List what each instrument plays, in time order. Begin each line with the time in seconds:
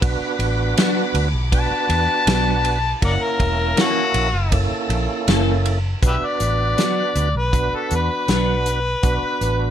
Already playing: string section B5
0.01 fingered electric bass B1, tonewheel organ B3 D4 F#4 B4, string section F#5 D6, kick, ride
0.39 fingered electric bass A1, ride
0.77 clean electric guitar F#3 B3 D4 F#4, snare, ride
1.14 fingered electric bass D2, ride
1.33 fingered electric bass B1
1.52 tonewheel organ B3 D4 F#4 B4, harmonica A5, kick, ride
1.71 muted fingered electric bass stroke
1.89 fingered electric bass E2, ride
2.27 fingered electric bass B1, clean electric guitar F#3 B3 D4 F#4, snare, ride
2.65 ride
3.01 fingered electric bass F#1, tonewheel organ A#3 C#4 E4 A#4, harmonica A#4 D5 F#5, string section F#5 A5 E6, kick, ride
3.23 harmonica A#4
3.40 fingered electric bass E1, kick, ride
3.76 clean electric guitar E3 A#3 C#4 A4, snare, ride
3.81 harmonica F#4
4.14 fingered electric bass A#1, ride
4.33 fingered electric bass F#1
4.51 tonewheel organ A#3 C#4 E4 A4, kick, ride
4.71 muted fingered electric bass stroke
4.89 fingered electric bass A#1, ride
5.27 fingered electric bass F#1, clean electric guitar E3 A#3 C#4 A4, snare, ride
5.66 ride
6.02 fingered electric bass B1, tonewheel organ B3 D4 F#4 B4, kick, closed hi-hat
6.07 harmonica G4 B4 E5
6.25 harmonica D5
6.40 fingered electric bass A1, closed hi-hat
6.78 clean electric guitar F#3 B3 D4 F#4, snare, closed hi-hat
7.16 fingered electric bass D2, closed hi-hat
7.35 fingered electric bass B1, harmonica B4
7.52 tonewheel organ B3 D4 F#4 B4, kick, closed hi-hat
7.75 harmonica A4
7.91 fingered electric bass E2, closed hi-hat
7.95 harmonica B4
8.28 fingered electric bass B1, clean electric guitar F#3 B3 D4 F#4, snare, closed hi-hat
8.66 closed hi-hat
9.03 fingered electric bass B1, tonewheel organ B3 D4 F#4 B4, kick, closed hi-hat
9.22 muted fingered electric bass stroke
9.41 fingered electric bass A1, closed hi-hat